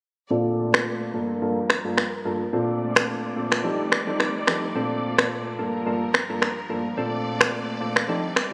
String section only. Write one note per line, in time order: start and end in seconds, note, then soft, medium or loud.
0.31 1.13 A#2 medium
0.31 1.13 A3 medium
0.31 1.13 D5 medium
1.14 2.52 G2 medium
1.14 2.52 F3 medium
1.14 2.52 A#4 medium
2.53 3.63 A#2 medium
2.53 4.73 A3 medium
2.53 5.56 D5 medium
3.64 4.74 F2 medium
3.64 4.74 C3 medium
3.64 4.74 G3 medium
3.64 4.74 D#4 medium
4.75 5.58 A#2 medium
4.75 5.58 A3 medium
5.59 6.96 G2 medium
5.59 6.96 F3 medium
5.59 6.96 A#4 medium
6.97 8.08 A#2 medium
6.97 8.53 A3 medium
6.97 8.53 D5 medium
8.09 8.53 F2 medium
8.09 8.53 C3 medium
8.09 8.53 G3 medium
8.09 8.53 D#4 medium